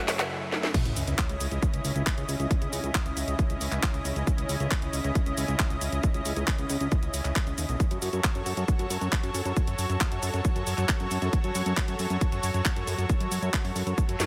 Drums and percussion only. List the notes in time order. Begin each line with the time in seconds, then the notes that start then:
0.08 snare, open hi-hat, shaker
0.19 snare, closed hi-hat, shaker
0.52 snare
0.63 snare
0.74 kick, closed hi-hat, crash, shaker
0.85 closed hi-hat, shaker
0.96 open hi-hat, shaker
1.07 closed hi-hat, shaker
1.18 kick, clap, closed hi-hat, shaker
1.29 closed hi-hat, shaker
1.40 open hi-hat, shaker
1.51 closed hi-hat, shaker
1.62 kick, closed hi-hat, shaker
1.74 closed hi-hat, shaker
1.85 open hi-hat, shaker
1.96 closed hi-hat, shaker
2.07 kick, clap, shaker
2.18 closed hi-hat, shaker
2.29 open hi-hat, shaker
2.40 closed hi-hat, shaker
2.51 kick, closed hi-hat, shaker
2.62 closed hi-hat, shaker
2.73 open hi-hat, shaker
2.84 closed hi-hat, shaker
2.95 kick, clap, closed hi-hat, shaker
3.06 closed hi-hat, shaker
3.17 open hi-hat, shaker
3.28 closed hi-hat, shaker
3.39 kick, closed hi-hat, shaker
3.50 closed hi-hat, shaker
3.61 open hi-hat, shaker
3.72 clap, closed hi-hat, shaker
3.83 kick, clap, closed hi-hat, shaker
3.94 closed hi-hat, shaker
4.05 open hi-hat, shaker
4.16 closed hi-hat, shaker
4.27 kick, closed hi-hat, shaker
4.38 closed hi-hat, shaker
4.49 open hi-hat, shaker
4.60 closed hi-hat, shaker
4.71 kick, clap, closed hi-hat, shaker
4.82 closed hi-hat, shaker
4.93 open hi-hat, shaker
5.04 closed hi-hat, shaker
5.15 kick, closed hi-hat, shaker
5.26 closed hi-hat, shaker
5.37 open hi-hat, shaker
5.48 closed hi-hat, shaker
5.59 kick, clap, shaker
5.70 closed hi-hat, shaker
5.81 open hi-hat, shaker
5.92 closed hi-hat, shaker
6.03 kick, closed hi-hat, shaker
6.14 closed hi-hat, shaker
6.25 open hi-hat, shaker
6.36 closed hi-hat, shaker
6.47 kick, clap, closed hi-hat, shaker
6.58 closed hi-hat, shaker
6.70 open hi-hat, shaker
6.81 closed hi-hat, shaker
6.92 kick, closed hi-hat, shaker
7.03 closed hi-hat, shaker
7.14 open hi-hat, shaker
7.25 clap, closed hi-hat, shaker
7.36 kick, clap, shaker
7.47 closed hi-hat, shaker
7.58 open hi-hat, shaker
7.69 closed hi-hat, shaker
7.80 kick, closed hi-hat, shaker
7.91 closed hi-hat, shaker
8.02 open hi-hat, shaker
8.13 closed hi-hat, shaker
8.24 kick, clap, closed hi-hat, shaker
8.35 closed hi-hat, shaker
8.46 open hi-hat, shaker
8.57 closed hi-hat, shaker
8.68 kick, closed hi-hat, shaker
8.79 closed hi-hat, shaker
8.90 open hi-hat, shaker
9.01 closed hi-hat, shaker
9.12 kick, clap, shaker
9.23 closed hi-hat, shaker
9.34 open hi-hat, shaker
9.45 closed hi-hat, shaker
9.56 kick, closed hi-hat, shaker
9.67 closed hi-hat, shaker
9.79 open hi-hat, shaker
9.90 closed hi-hat, shaker
10.01 kick, clap, closed hi-hat, shaker
10.12 closed hi-hat, shaker
10.23 open hi-hat, shaker
10.34 closed hi-hat, shaker
10.45 kick, closed hi-hat, shaker
10.56 closed hi-hat, shaker
10.67 open hi-hat, shaker
10.78 clap, closed hi-hat, shaker
10.89 kick, clap, closed hi-hat, shaker
11.00 closed hi-hat, shaker
11.11 open hi-hat, shaker
11.22 closed hi-hat, shaker
11.33 kick, closed hi-hat, shaker
11.44 closed hi-hat, shaker
11.55 open hi-hat, shaker
11.66 closed hi-hat, shaker
11.77 kick, clap, closed hi-hat, shaker
11.88 closed hi-hat, shaker
11.99 open hi-hat, shaker
12.10 closed hi-hat, shaker
12.21 kick, closed hi-hat, shaker
12.32 closed hi-hat, shaker
12.43 open hi-hat, shaker
12.54 closed hi-hat, shaker
12.65 kick, clap, shaker
12.76 closed hi-hat, shaker
12.87 open hi-hat, shaker
12.98 closed hi-hat, shaker
13.09 kick, closed hi-hat, shaker
13.21 closed hi-hat, shaker
13.32 open hi-hat, shaker
13.43 closed hi-hat, shaker
13.54 kick, clap, closed hi-hat, shaker
13.65 open hi-hat, shaker
13.76 open hi-hat, shaker
13.87 closed hi-hat, shaker
13.98 kick, closed hi-hat, shaker
14.09 closed hi-hat, shaker
14.20 snare, open hi-hat, shaker